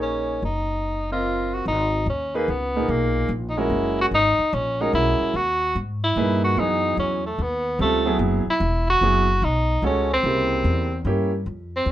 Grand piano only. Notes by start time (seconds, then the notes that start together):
Already playing: A#3 D#4 G#4 C#5
1.11 C4 F4 A#4 D#5
2.34 A#3 D#4 G#4 B4
2.76 A#2 D#4 G#4 A#4
3.57 G#3 C#4 F#4 A#4
4.81 G#3 C#4 F#4 A#4
6.17 A#2 D#4 G#4 B4
6.58 E3 F#3 B3 G#4
7.80 G3 C4 F4 A4
8.05 F#3 B3 E4 G#4
9.02 F#3 B3 E4 G#4
9.83 G#3 C#4 F#4 A4
10.25 C#3 A#3 E4 G4
11.06 A#3 C#4 E4 G4